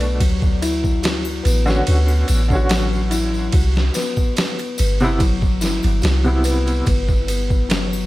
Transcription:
Already playing: B1 B2 A3 B3 D4 E4 F#4
0.00 ride, tambourine
0.20 D2 F#3, kick, ride, tambourine
0.42 kick, tambourine
0.62 E4, ride, tambourine
0.84 kick, tambourine
1.03 F#4, snare, ride, tambourine
1.25 tambourine, triangle
1.43 A1 B3, ride, tambourine
1.66 D3 C#4 F#4, snare, tambourine
1.86 D2 B3, ride, tambourine
2.08 tambourine, triangle
2.27 A1 B3, ride, tambourine
2.48 D3 C#4, kick, tambourine
2.55 F#4
2.69 F#3, snare, ride, tambourine
2.93 tambourine
3.10 E4, ride, tambourine
3.34 tambourine
3.52 C2 F#4, kick, ride, tambourine
3.75 snare, tambourine
3.94 B3, snare, ride, tambourine
4.16 kick, tambourine, triangle
4.36 B3, snare, ride, tambourine
4.59 ride, tambourine, triangle
4.78 G1 B3, ride, tambourine
5.00 C3 B3 E4, tambourine
5.19 F#3, kick, ride, tambourine
5.42 kick, tambourine
5.61 E4, snare, ride, tambourine
5.83 G1, ride, tambourine, triangle
6.02 C2 F#4, snare, ride, tambourine
6.24 C3 B3 E4, tambourine
6.44 B3, ride, tambourine
6.67 ride, tambourine
6.85 G1 B3, kick, ride, tambourine
7.08 kick, tambourine
7.27 B3, ride, tambourine
7.50 kick, tambourine
7.69 F#3, snare, ride, tambourine
7.93 tambourine, triangle

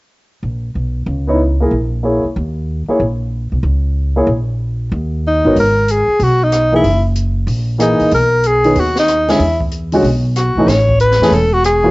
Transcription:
0.43 A#1
0.75 B1
1.06 C#2
1.27 B3 D#4 E4 C#5
1.60 A#3 E4 G#4 A#4
1.71 A#1
2.03 A#3 E4 G#4 C#5
2.25 muted upright bass stroke
2.36 D#2
2.88 A#3 E4 G#4 C#5, muted upright bass stroke
3.00 A#1
3.52 B1
3.63 C#2
4.16 A#3 E4 G#4 C#5
4.27 A#1
4.92 D#2
5.27 D#4
5.45 A1 G#2 B3 F#4 A#4 C#5
5.56 G#1 A#4, open hi-hat
5.88 G#4, closed hi-hat
6.08 muted upright bass stroke
6.19 B1, open hi-hat
6.24 F#4
6.44 D#4
6.52 cross-stick, closed hi-hat
6.72 E3 A#3 D#4 E4 G#4
6.84 F#1, open hi-hat
7.15 closed hi-hat
7.47 A#1, open hi-hat
7.78 E3 A#3 D#4 G#4, cross-stick, closed hi-hat
8.00 A#1, open hi-hat
8.11 B1 A#4, open hi-hat
8.43 G#4, closed hi-hat
8.64 D#3 B3 C#4 G#4, open hi-hat
8.75 D#2, open hi-hat
8.80 F#4
8.96 D#4, snare
9.08 cross-stick, closed hi-hat
9.28 D3 G#3 C#4 E4 G#4, snare, open hi-hat
9.39 E2, open hi-hat
9.60 kick
9.71 closed hi-hat
9.92 D3 G#3 C#4 F#4, open hi-hat
10.02 B1, open hi-hat
10.36 F#4, cross-stick, closed hi-hat
10.55 A#1 E3 A3 C#4 D#4
10.67 A1 C#5, snare, open hi-hat
10.89 kick
10.99 B4, closed hi-hat
11.11 snare
11.20 E2 E3 A3 C#4 G#4, snare
11.31 E1 A4, open hi-hat
11.53 F#4
11.64 G#4, cross-stick, closed hi-hat
11.83 E3 A#3 C#4 F#4

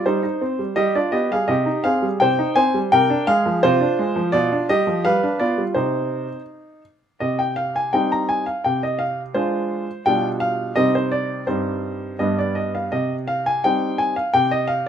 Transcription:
0.06 G3 D#4 C5
0.23 D#4
0.41 C4
0.59 G3
0.76 G3 G4 D#5
0.95 D4 F4 D5
1.12 B3 G4 D#5
1.31 G3 G#4 F5
1.48 C3 G4 D#5
1.66 D#4
1.84 C4 G#4 F5
2.02 G3
2.20 C3 C5 G5
2.39 D#4
2.56 C4 C5 G#5
2.74 G3
2.92 C3 A#4 G5
3.10 D4
3.27 G#3 G#4 F5
3.46 F3
3.63 C3 F4 C5
3.81 D4
3.99 G#3
4.16 F3
4.32 B2 F4 D5
4.52 D4
4.69 G3 G4 D#5
4.87 F3
5.05 G3 B4 F5
5.23 D4
5.39 B3 F4 D5
5.58 G3
5.74 C3 C4 D#4 C5
7.20 C3 D#5
7.39 G5
7.56 F5
7.76 G#5
7.93 G3 C4 D#4 G5
8.12 A#5
8.29 G#5
8.46 F5
8.64 C3 G5
8.83 D#5
8.99 F5
9.34 G#3 D4 F4 C5
10.06 B2 G3 D4 F4 G5
10.40 F5
10.76 C3 G3 C4 D#4 D#5
10.95 C5
11.12 D5
11.47 G2 G3 C4 D#4 C5
12.19 G2 G3 B3 D4 D#5
12.39 D5
12.55 D#5
12.75 F5
12.92 C3 D#5
13.28 F5
13.46 G#5
13.64 G3 C4 D#4 G5
13.98 G#5
14.16 F5
14.34 C3 G5
14.51 D#5
14.68 F5

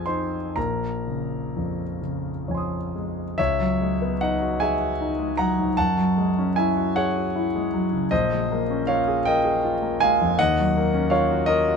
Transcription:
Already playing: F2 F3 G#4 G#5
0.06 C4 D#4 C5 C6
0.56 A#1 A#4 A#5
1.07 C#3
1.56 F2
2.02 C#3
2.48 F2 C#5 G#5
2.55 C6 D#6
2.96 G#3
3.38 C#2 C#5 E5
3.60 F#3
3.81 G#3
4.02 B3
4.21 D#4 D#5 F#5
4.42 F#4
4.60 G#4 E5 G#5
4.81 F#4
5.01 D#4
5.19 G#3
5.37 F#3 F#5 A#5
5.59 G#2
5.77 F#2 F#5 A5
5.97 F#3
6.17 G#3
6.39 C#4
6.56 E4 E5 G#5
6.77 F#4
6.96 G#4 C#5 F#5
7.17 F#4
7.36 E4
7.55 G#3
7.74 F#3
7.93 C#3
8.11 A#1 C5 D#5
8.32 G#3
8.51 A#3
8.70 C#4
8.87 F4 C#5 F5
9.08 G#4
9.25 A#4 D#5 G5
9.45 G#4
9.64 F4
9.82 A#3
10.00 G#3 F5 G#5
10.21 F2
10.39 D#2 D#5 F#5
10.59 F#3
10.77 A#3
10.94 C#4
11.10 F4 C#5 F5
11.31 F#4
11.46 F4 A#4 D#5
11.68 F#4

